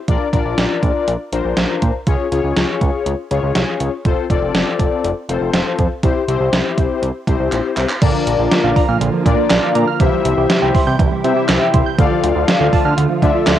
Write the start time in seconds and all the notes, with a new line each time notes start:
0.08 A#1 D4 F4 A#4 D5, kick, closed hi-hat
0.33 A#1 D4 F4 A#4 D5, kick, closed hi-hat
0.45 A#1
0.58 A#1, snare, closed hi-hat
0.83 A#1, kick, closed hi-hat
1.08 A#1, closed hi-hat
1.32 A#1 D4 F4 A#4 C5, closed hi-hat
1.45 A#1
1.57 A#1, snare, closed hi-hat
1.82 A#2, kick, closed hi-hat
2.07 C#2 C#4 F4 G#4 C#5, kick, closed hi-hat
2.31 C#2 C#4 F4 G#4 C#5, closed hi-hat
2.44 C#2
2.56 C#2, snare, closed hi-hat
2.81 C#2, kick, closed hi-hat
3.06 C#2, closed hi-hat
3.31 C#2 C#4 F4 G#4 C#5, closed hi-hat
3.43 C#2
3.55 C2, snare, closed hi-hat
3.80 C#2, closed hi-hat
4.05 F1 C4 F4 A4 C5, kick, closed hi-hat
4.30 F1 C4 F4 A4 D5, kick, closed hi-hat
4.42 F1
4.54 F1, snare, closed hi-hat
4.79 F1, kick, closed hi-hat
5.04 F1, closed hi-hat
5.29 F1 C4 F4 A4 C5, closed hi-hat
5.41 F1
5.54 F1, snare, closed hi-hat
5.79 F2, kick, closed hi-hat
6.03 C2 C4 E4 G4 C5, kick, closed hi-hat
6.28 C2 C4 E4 G4 C5, closed hi-hat
6.40 C2
6.53 C2, snare, closed hi-hat
6.78 C2, kick, closed hi-hat
7.02 C2, closed hi-hat
7.27 C2 C4 E4 G4 C5, kick, closed hi-hat
7.40 C2
7.52 A#1, clap, closed hi-hat
7.77 C2, clap, closed hi-hat
7.89 clap
8.02 A#1 D3 F3 A#3 D4 F4 A#4 D5, kick, closed hi-hat, crash
8.14 F3
8.26 A#1, closed hi-hat
8.39 A#1 F4
8.51 snare, closed hi-hat
8.64 A#1 F5
8.76 A#5, kick, open hi-hat
8.88 A#2 F6
9.01 A#1 D3, closed hi-hat
9.13 F3
9.26 A#2 A#3 D4 F4 A#4 D5, kick, closed hi-hat
9.38 F4
9.50 A#1 D5, snare, clap, closed hi-hat
9.63 F5
9.75 A#2 A#5, closed hi-hat
9.87 F6
10.00 C2 C3 E3 G3 E4 G4 C5 E5, kick, closed hi-hat
10.12 G3
10.25 C2, closed hi-hat
10.37 C2 G4
10.50 snare, closed hi-hat
10.62 C2 G5
10.74 C6, kick, open hi-hat
10.87 C3 G6
10.99 C2 E3, kick, closed hi-hat
11.12 G3
11.24 C3 C4 E4 G4 C5 E5, closed hi-hat
11.36 G4
11.49 C2 E5, snare, clap, closed hi-hat
11.61 G5
11.74 C2 C6, kick, closed hi-hat
11.86 G6
11.98 D2 D3 F3 A3 F4 A4 D5 F5, kick, closed hi-hat
12.11 F3
12.23 D2, closed hi-hat
12.36 D2 F4
12.48 snare, closed hi-hat
12.60 D2 F5
12.73 A5, kick, open hi-hat
12.85 D3 F6
12.98 D2 D3, closed hi-hat
13.10 F3
13.22 D3 A3 F4 A4 D5 E5, kick, closed hi-hat
13.35 F4
13.47 D2 D5, snare, clap, closed hi-hat